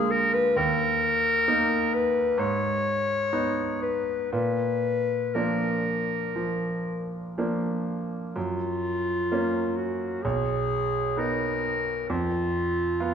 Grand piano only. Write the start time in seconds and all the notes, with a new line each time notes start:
Already playing: D3 G#3 A#3 F4
0.56 D#2
1.48 A#3 D#4
2.38 G#2
3.33 B3 D#4
4.32 A#2
5.35 F3 A#3 D4
6.36 F3
7.38 F3 A#3 D4
8.36 F#2
9.32 A#3 C#4
10.25 B1
11.17 B3 D#4
12.10 F2
13.00 B3 F4